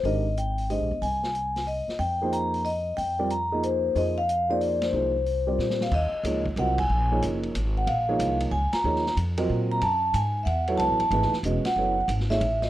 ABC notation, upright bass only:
X:1
M:3/4
L:1/8
Q:"Swing" 1/4=184
K:Fdor
V:1 name="Upright bass" clef=bass
A,,,4- (3A,,, B,,, G,,, | C,,4- C,, z | F,,6 | F,,6 |
F,,6 | C,,4 B,,2 | [K:Ebdor] E,, z D,,2 C,,2 | B,,,2 G,,,2 A,,,2 |
B,,,2 C,,2 D,, z | E,,2 F,,2 B,,2 | G,,2 A,,2 _F,,2 | (3D,, =A,,, G,,, _A,,, z _F,,, z |
G,,,2 A,,,2 =A,,,2 |]